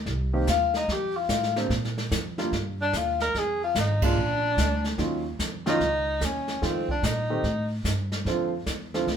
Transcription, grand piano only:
0.33 D#3 A#3 C4 G4
1.56 D3 G3 A#3 C4
2.38 D3 G3 A#3 F4
4.02 D3 G#3 A#3 F4
4.98 D#3 F#3 C#4 F4
5.66 D#3 F#3 C#4 F4
6.62 D#3 A3 C4 F4
7.30 D#3 A3 C4 G4
8.27 D3 F3 A3 C4 F4
8.94 D3 F3 A3 C4 F4

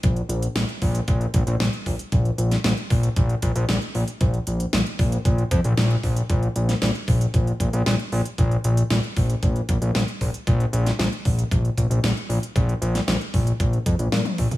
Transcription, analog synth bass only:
0.04 A#1
0.29 A#1
0.55 A#1
0.82 A#1
1.08 A#1
1.34 A#1
1.47 A#1
1.60 A#1
1.86 A#1
2.12 A#1
2.38 A#1
2.64 A#1
2.90 A#1
3.17 A#1
3.43 A#1
3.56 A#1
3.69 A#1
3.95 A#1
4.21 A#1
4.47 A#1
4.73 A#1
4.99 A#1
5.25 A#1
5.51 F2
5.65 A#1
5.78 A#1
6.04 A#1
6.30 A#1
6.56 A#1
6.82 A#1
7.08 A#1
7.34 A#1
7.60 A#1
7.73 A#1
7.86 A#1
8.12 A#1
8.38 A#1
8.65 A#1
8.90 A#1
9.17 A#1
9.43 A#1
9.69 A#1
9.82 A#1
9.95 A#1
10.21 A#1
10.47 A#1
10.73 A#1
10.99 A#1
11.25 A#1
11.51 A#1
11.78 A#1
11.90 A#1
12.03 A#1
12.29 A#1
12.56 A#1
12.82 A#1
13.08 A#1
13.34 A#1
13.60 A#1
13.86 F2
13.99 A#1
14.12 A#2
14.38 A#1

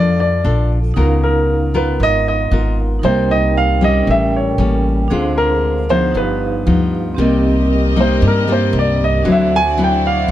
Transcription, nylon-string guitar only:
Already playing: F3 D4 F4 A4
0.44 D4 F4 A4
0.96 C#3 B3 F4 A#4
1.74 B3 F4 A#4
2.00 G#2
2.52 B3 F4 A#4
3.03 C3 G3 A#3 D#4
3.81 G3 C#4
4.07 A2
4.59 G3 A#3 C#4
5.10 D3 G#3 C4 F4
5.89 F3 B3 D#4
6.14 G2
6.67 F3 B3 D#4
7.18 C3 G3 A#3 D#4
7.96 G3 A#3 D#4
8.21 G2
8.48 G3 A#3 D#4
9.25 D3 F#3 C4 E4
9.78 F#3 C4 E4

